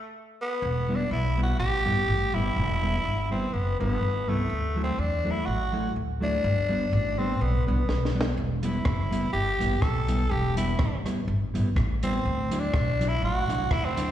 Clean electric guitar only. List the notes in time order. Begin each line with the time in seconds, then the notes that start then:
0.89 G3 B3 E4
1.37 G3 B3 E4
1.59 muted clean electric guitar stroke
1.85 G3 B3 E4
2.34 G3 B3 E4
2.82 G3 B3 E4
3.31 G3 B3 E4
3.53 muted clean electric guitar stroke
3.79 G3 B3 E4
4.01 muted clean electric guitar stroke
4.28 G3 B3 E4
4.76 F#3 A3 E4
5.24 F#3 A3 E4
5.47 muted clean electric guitar stroke
5.72 F#3 A3 E4
6.20 F#3 A3 E4
6.69 G3 B3 D4
7.18 G3 B3 D4
7.40 muted clean electric guitar stroke
7.66 G3 B3 D4
8.15 G3 B3 D4
8.63 G3 B3 E4
9.11 G3 B3 E4
9.33 muted clean electric guitar stroke
9.59 G3 B3 E4
10.08 G3 B3 E4
10.56 G3 B3 E4
11.05 G3 B3 E4
11.27 muted clean electric guitar stroke
11.54 G3 B3 E4
12.03 G3 B3 E4
12.51 F#3 D4 E4
13.00 F#3 D4 E4
13.22 muted clean electric guitar stroke
13.48 F#3 D4 E4
13.97 F#3 D4 E4